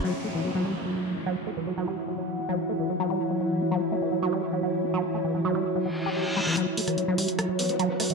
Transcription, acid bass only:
0.04 0.13 F#3 loud
0.24 0.28 A3 medium
0.35 0.44 E3 medium
0.45 0.51 F#3 medium
0.55 0.64 F#3 loud
0.65 0.75 G3 medium
0.86 0.95 F#3 medium
0.96 1.18 F#3 medium
1.16 1.20 F#4 medium
1.26 1.36 F#3 loud
1.47 1.51 A3 medium
1.57 1.67 E3 medium
1.67 1.74 F#3 medium
1.77 1.87 F#3 loud
1.88 1.97 G3 medium
2.08 2.18 F#3 medium
2.18 2.40 F#3 medium
2.39 2.42 F#4 medium
2.49 2.58 F#3 loud
2.69 2.73 A3 medium
2.79 2.89 E3 medium
2.90 2.96 F#3 medium
3.00 3.09 F#3 loud
3.10 3.20 G3 medium
3.30 3.40 F#3 medium
3.41 3.63 F#3 medium
3.61 3.65 F#4 medium
3.71 3.81 F#3 loud
3.92 3.96 A3 medium
4.02 4.11 E3 medium
4.12 4.18 F#3 medium
4.22 4.32 F#3 loud
4.33 4.42 G3 medium
4.53 4.62 F#3 medium
4.63 4.85 F#3 medium
4.84 4.87 F#4 medium
4.94 5.03 F#3 loud
5.14 5.18 A3 medium
5.24 5.34 E3 medium
5.35 5.41 F#3 medium
5.45 5.54 F#3 loud
5.55 5.65 G3 medium
5.75 5.85 F#3 medium
5.86 5.89 F#3 medium
6.06 6.10 G4 loud
6.16 6.26 G4 medium
6.37 6.40 G3 loud
6.47 6.56 E3 medium
6.57 6.67 F#3 loud
6.77 6.81 A3 medium
6.88 6.97 E3 medium
6.98 7.04 F#3 medium
7.08 7.18 F#3 loud
7.18 7.28 G3 medium
7.39 7.48 F#3 medium
7.49 7.71 F#3 medium
7.69 7.73 F#4 medium
7.79 7.89 F#3 loud
8.00 8.04 A3 medium
8.10 8.14 E3 medium

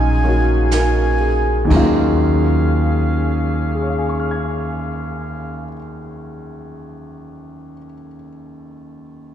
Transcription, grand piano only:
0.00 1.66 D#3 medium
0.00 1.72 F3 medium
0.00 0.70 F#3 medium
0.00 1.72 C#4 medium
0.00 0.24 D#4 medium
0.00 1.71 F4 medium
0.24 1.70 A#3 soft
0.24 1.71 D#4 soft
0.24 1.00 C#5 soft
0.28 1.72 F#4 soft
0.73 1.67 A#4 soft
1.20 1.67 G#4 soft
1.65 5.64 D#2 medium
1.65 5.67 D#3 soft
1.69 5.69 F#3 medium
1.69 5.72 G#3 soft
1.74 5.74 C#4 soft
1.74 5.76 F4 medium
3.75 7.71 G#4 soft
3.82 7.78 C#5 soft
3.90 7.86 F5 soft
3.98 7.94 G#5 soft
4.09 8.05 C#6 soft
4.20 8.15 F6 soft
4.31 8.27 G#6 soft

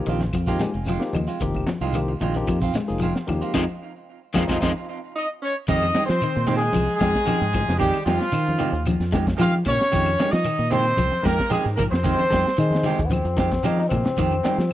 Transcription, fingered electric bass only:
0.07 0.29 A#1 loud
0.34 0.56 F2 medium
0.75 0.97 F1 medium
1.15 1.26 D#2 medium
1.41 1.63 F1 loud
1.81 2.14 C2 medium
2.21 2.44 A#1 medium
2.48 2.70 F2 medium
2.90 3.12 F1 medium
3.29 3.40 D#2 medium
3.55 3.65 F2 medium
4.36 4.46 F2 loud
4.49 4.58 F2 loud
4.63 4.72 F2 medium
5.69 5.91 F2 loud
6.09 6.20 F3 medium
6.36 6.69 A#2 medium
6.76 6.87 C2 medium
7.01 7.13 F2 loud
7.28 muted fingered electric bass stroke soft
7.41 7.64 G#2 medium
7.68 7.90 F2 loud
8.06 8.18 F2 medium
8.33 8.67 D#3 medium
8.72 8.95 D#2 medium
9.00 9.33 F2 medium
9.39 9.62 F3 loud
9.66 9.78 A#2 loud
9.93 10.15 F2 loud
10.33 10.44 F3 loud
10.59 10.92 A#2 medium
10.98 11.10 C2 loud
11.26 11.37 F2 medium
11.52 muted fingered electric bass stroke soft
11.65 11.88 G#2 medium
11.92 12.14 F2 medium
12.33 12.44 F2 medium
12.58 12.92 D#3 medium
12.99 13.21 D#2 medium
13.25 13.58 F2 medium
13.65 13.87 F3 loud
13.92 14.03 A#2 medium
14.18 14.40 F2 medium
14.58 14.69 F3 medium

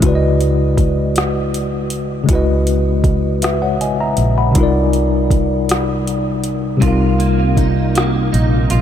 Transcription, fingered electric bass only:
0.03 2.25 C#2 medium
2.29 3.80 C#2 medium
3.80 4.14 B1 medium
4.18 4.52 A#1 medium
4.56 6.78 C2 medium
6.82 8.29 C2 medium
8.34 8.67 A#1 medium
8.72 8.82 A#1 medium

